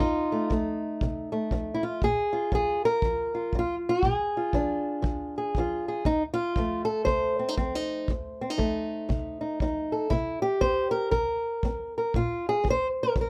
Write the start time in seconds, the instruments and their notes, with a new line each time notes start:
Already playing: steel-string acoustic guitar F4
0.00 steel-string acoustic guitar F2 D#4, kick
0.32 steel-string acoustic guitar A3
0.50 steel-string acoustic guitar F3 A3, kick
1.01 steel-string acoustic guitar C3, kick
1.32 steel-string acoustic guitar A3
1.51 steel-string acoustic guitar F3, kick
1.74 steel-string acoustic guitar E4
1.83 steel-string acoustic guitar F4
2.02 steel-string acoustic guitar A#2 G#4, kick
2.33 steel-string acoustic guitar F4
2.52 steel-string acoustic guitar F3 G#4, kick
2.85 steel-string acoustic guitar A#4
3.02 steel-string acoustic guitar F3, kick
3.35 steel-string acoustic guitar F4
3.53 steel-string acoustic guitar F3, kick
3.59 steel-string acoustic guitar F4
3.89 steel-string acoustic guitar G#4
4.03 steel-string acoustic guitar B2, kick
4.37 steel-string acoustic guitar F4
4.53 steel-string acoustic guitar F3 D4, kick
5.02 steel-string acoustic guitar F3, kick
5.38 steel-string acoustic guitar G#4
5.55 steel-string acoustic guitar F3, kick
5.59 steel-string acoustic guitar F4
5.88 steel-string acoustic guitar G#4
6.05 steel-string acoustic guitar F2 D#4, kick
6.34 steel-string acoustic guitar F4
6.56 steel-string acoustic guitar F3 A3, kick
6.85 steel-string acoustic guitar A4
7.05 steel-string acoustic guitar C3 C5, kick
7.39 steel-string acoustic guitar C4
7.49 steel-string acoustic guitar D#4
7.57 steel-string acoustic guitar F3 C4, kick
7.75 steel-string acoustic guitar D#4
8.08 steel-string acoustic guitar F2, kick
8.41 steel-string acoustic guitar C4
8.50 steel-string acoustic guitar D#4
8.58 steel-string acoustic guitar F3 A3, kick
9.09 steel-string acoustic guitar C3, kick
9.41 steel-string acoustic guitar D#4
9.60 steel-string acoustic guitar F3 D#4, kick
9.92 steel-string acoustic guitar A4
10.10 steel-string acoustic guitar C3 E4, kick
10.42 steel-string acoustic guitar G4
10.61 steel-string acoustic guitar C4 C5, kick
10.91 steel-string acoustic guitar A#4
11.11 steel-string acoustic guitar C3 A#4, kick
11.63 steel-string acoustic guitar C4, kick
11.98 steel-string acoustic guitar A#4
12.14 steel-string acoustic guitar A#2 F4, kick
12.49 steel-string acoustic guitar G#4
12.64 steel-string acoustic guitar F3, kick
12.70 steel-string acoustic guitar C5
13.03 steel-string acoustic guitar A#4
13.16 steel-string acoustic guitar F3, kick
13.21 steel-string acoustic guitar A#4